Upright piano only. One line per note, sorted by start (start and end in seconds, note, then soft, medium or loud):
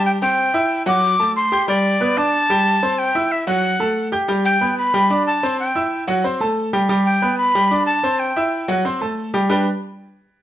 0.00 0.16 G3 medium
0.00 0.16 G4 medium
0.00 0.16 G5 medium
0.22 0.48 C4 medium
0.22 0.48 C5 medium
0.22 0.49 C6 medium
0.54 0.81 E4 medium
0.54 0.81 E5 medium
0.54 0.81 E6 medium
0.86 1.13 F#3 loud
0.86 1.13 F#4 loud
0.86 1.13 F#5 loud
1.19 1.46 A3 medium
1.19 1.46 A4 medium
1.19 1.46 A5 medium
1.52 1.65 G4 medium
1.52 1.65 G5 medium
1.52 1.66 G6 medium
1.68 1.95 G3 medium
1.68 1.95 G4 medium
1.68 1.95 G5 medium
2.00 2.14 B3 medium
2.00 2.14 B4 medium
2.00 2.14 B5 medium
2.17 2.43 D4 medium
2.17 2.44 D5 medium
2.17 2.44 D6 medium
2.50 2.76 G3 medium
2.50 2.76 G4 medium
2.50 2.76 G5 loud
2.83 3.09 C4 medium
2.83 3.09 C5 medium
2.83 3.09 C6 medium
3.15 3.42 E4 medium
3.15 3.42 E5 medium
3.15 3.42 E6 medium
3.47 3.74 F#3 medium
3.47 3.74 F#4 loud
3.47 3.74 F#5 medium
3.80 4.06 A3 medium
3.80 4.06 A4 medium
3.80 4.07 A5 medium
4.12 4.25 G4 medium
4.12 4.26 G5 medium
4.12 4.26 G6 medium
4.28 4.55 G3 medium
4.28 4.55 G4 medium
4.28 4.55 G5 medium
4.61 4.88 B3 medium
4.61 4.88 B4 medium
4.61 4.88 B5 medium
4.94 5.07 G3 medium
4.94 5.07 G4 medium
4.94 5.07 G5 medium
5.10 5.37 D4 medium
5.10 5.37 D5 medium
5.10 5.37 D6 medium
5.43 5.70 C4 medium
5.43 5.70 C5 medium
5.43 5.70 C6 medium
5.75 6.02 E4 medium
5.75 6.02 E5 medium
5.75 6.02 E6 medium
6.07 6.21 F#3 medium
6.07 6.21 F#4 loud
6.07 6.21 F#5 medium
6.24 6.38 C4 medium
6.24 6.38 C5 medium
6.24 6.38 C6 medium
6.40 6.67 A3 medium
6.40 6.67 A4 medium
6.40 6.68 A5 medium
6.73 6.86 G3 medium
6.73 6.87 G4 medium
6.73 6.87 G5 medium
6.89 7.16 G3 medium
6.89 7.16 G4 medium
6.89 7.16 G5 medium
7.22 7.49 B3 medium
7.22 7.49 B4 medium
7.22 7.49 B5 medium
7.55 7.68 G3 medium
7.55 7.68 G4 medium
7.55 7.68 G5 medium
7.71 7.98 D4 medium
7.71 7.98 D5 medium
7.71 7.98 D6 medium
8.03 8.30 C4 medium
8.03 8.30 C5 medium
8.03 8.30 C6 medium
8.36 8.63 E4 medium
8.36 8.63 E5 medium
8.36 8.63 E6 medium
8.68 8.82 F#3 loud
8.68 8.82 F#4 medium
8.68 8.82 F#5 loud
8.85 8.98 C4 medium
8.85 8.98 C5 medium
8.85 8.99 C6 medium
9.01 9.28 A3 medium
9.01 9.28 A4 medium
9.01 9.28 A5 medium
9.34 9.47 G3 medium
9.34 9.47 G4 medium
9.34 9.48 G5 medium
9.49 9.65 G3 medium
9.49 9.65 D4 medium
9.49 9.65 G4 medium
9.49 9.65 B4 medium
9.49 9.65 D5 medium
9.49 9.65 G5 loud